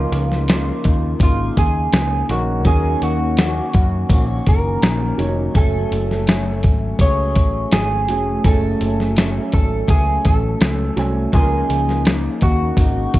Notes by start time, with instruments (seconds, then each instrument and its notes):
Already playing: clean electric guitar C#3 A#3 D#4 F4, upright piano F3 C#4 D#4 A#4
0.12 picked electric bass C#2, closed hi-hat
0.32 snare
0.48 clean electric guitar C#3 A#3 D#4 F4, snare, closed hi-hat
0.84 picked electric bass D#2, kick, closed hi-hat
1.19 picked electric bass G#1, clean electric guitar C#3 A#3 D#4 F4, kick, closed hi-hat
1.57 picked electric bass D#2, clean electric guitar G#4, kick, closed hi-hat
1.93 picked electric bass C#2, snare, closed hi-hat
2.29 picked electric bass A#1, upright piano D#3 C#4 D#4 A#4, clean electric guitar F#4, closed hi-hat
2.65 picked electric bass D#2, clean electric guitar D#3 A#3 C#4 F#4 G#4, upright piano F#3 C#4 D#4 A#4, kick, closed hi-hat
3.02 picked electric bass D#2, clean electric guitar F#4, closed hi-hat
3.37 clean electric guitar D#3 A#3 C#4 F#4, snare, closed hi-hat
3.74 picked electric bass F#2, kick, closed hi-hat
4.09 picked electric bass A#1, clean electric guitar D#3 A#3 C#4, kick, closed hi-hat
4.14 clean electric guitar F#4
4.46 picked electric bass F#1, clean electric guitar A#4, kick, closed hi-hat
4.82 picked electric bass A#1, snare, closed hi-hat
5.18 picked electric bass F1, upright piano F#3 C#4 D#4 C#5, closed hi-hat
5.54 picked electric bass F#1, upright piano F#3 A3 C#4 G#5, clean electric guitar F#3 A3 C#4 A4, kick, closed hi-hat
5.92 picked electric bass F#1, closed hi-hat
6.11 snare
6.27 clean electric guitar F#3 A3 C#4, snare, closed hi-hat
6.63 picked electric bass G#1, kick, closed hi-hat
6.99 picked electric bass C#2, clean electric guitar F#3 A3 C#4 C#5, kick, closed hi-hat
7.04 clean electric guitar G#4
7.36 picked electric bass A1, kick, closed hi-hat
7.72 picked electric bass G#1, clean electric guitar G#4, snare, closed hi-hat
8.08 picked electric bass F1, upright piano F#3 A3 C#4 G#4, closed hi-hat
8.44 picked electric bass F#1, upright piano F#3 G#3 C#4 G#5, clean electric guitar F#3 A3 C#4 A4, kick, closed hi-hat
8.51 upright piano A3
8.81 picked electric bass F#1, closed hi-hat
9.00 snare
9.16 clean electric guitar F#3 A3 C#4, snare, closed hi-hat
9.52 picked electric bass G#1, clean electric guitar A4, kick, closed hi-hat
9.88 picked electric bass C#2, clean electric guitar F#3 A3 C#4 G#4, kick, closed hi-hat
10.25 picked electric bass A1, clean electric guitar A4, kick, closed hi-hat
10.61 picked electric bass C#2, snare, closed hi-hat
10.96 picked electric bass C2, upright piano F#3 A3 C#4 G#5, closed hi-hat
11.32 picked electric bass C#2, clean electric guitar C#3 A#3 D#4 F4 G#4, upright piano F3 C#4 D#4 A#4, kick, closed hi-hat
11.70 picked electric bass C#2, closed hi-hat
11.89 snare
12.05 clean electric guitar C#3 A#3 D#4, snare, closed hi-hat
12.41 picked electric bass D#2, clean electric guitar F#4, kick, closed hi-hat
12.77 picked electric bass G#1, clean electric guitar C#3 A#3 D#4, kick, closed hi-hat
13.14 picked electric bass D#2, kick, closed hi-hat